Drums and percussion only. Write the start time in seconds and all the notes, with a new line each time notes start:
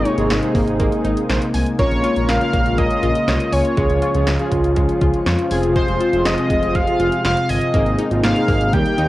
0.05 closed hi-hat
0.18 closed hi-hat
0.30 snare, closed hi-hat
0.43 closed hi-hat
0.55 kick, open hi-hat
0.67 closed hi-hat
0.80 kick, closed hi-hat
0.92 closed hi-hat
1.05 closed hi-hat
1.17 closed hi-hat
1.30 snare, closed hi-hat
1.42 closed hi-hat
1.54 open hi-hat
1.66 closed hi-hat
1.79 kick, closed hi-hat
1.91 closed hi-hat
2.04 closed hi-hat
2.16 closed hi-hat
2.29 snare, closed hi-hat
2.41 closed hi-hat
2.53 kick, closed hi-hat
2.66 closed hi-hat
2.78 kick, closed hi-hat
2.91 closed hi-hat
3.03 closed hi-hat
3.15 closed hi-hat
3.28 snare, closed hi-hat
3.40 closed hi-hat
3.53 open hi-hat
3.65 closed hi-hat
3.77 kick, closed hi-hat
3.90 closed hi-hat
4.02 closed hi-hat
4.15 closed hi-hat
4.27 snare, closed hi-hat
4.39 closed hi-hat
4.52 kick, closed hi-hat
4.64 closed hi-hat
4.76 kick, closed hi-hat
4.89 closed hi-hat
5.01 kick, closed hi-hat
5.14 closed hi-hat
5.26 snare, closed hi-hat
5.39 closed hi-hat
5.51 open hi-hat
5.63 closed hi-hat
5.76 kick, closed hi-hat
5.88 closed hi-hat
6.00 closed hi-hat
6.13 closed hi-hat
6.25 snare, closed hi-hat
6.38 closed hi-hat
6.50 kick, closed hi-hat
6.63 closed hi-hat
6.75 kick, closed hi-hat
6.87 closed hi-hat
7.00 closed hi-hat
7.12 closed hi-hat
7.25 snare, closed hi-hat
7.37 closed hi-hat
7.49 open hi-hat
7.62 closed hi-hat
7.74 kick, closed hi-hat
7.86 closed hi-hat
7.99 closed hi-hat
8.11 closed hi-hat
8.24 snare, closed hi-hat
8.36 closed hi-hat
8.48 kick, open hi-hat
8.61 closed hi-hat
8.73 kick, closed hi-hat
8.86 closed hi-hat
8.98 closed hi-hat